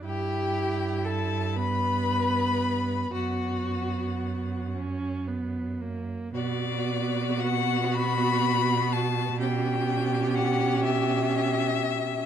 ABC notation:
X:1
M:6/8
L:1/8
Q:3/8=39
K:Bm
V:1 name="Violin"
g2 a b3 | f3 z3 | d2 f b2 a | g2 f e3 |]
V:2 name="Violin"
G2 A B3 | F3 z3 | F6 | G6 |]
V:3 name="Viola"
E3 B,3 | B,3 C B, ^A, | B,6 | C6 |]
V:4 name="Cello" clef=bass
G,,6 | F,,6 | B,,6- | B,,6 |]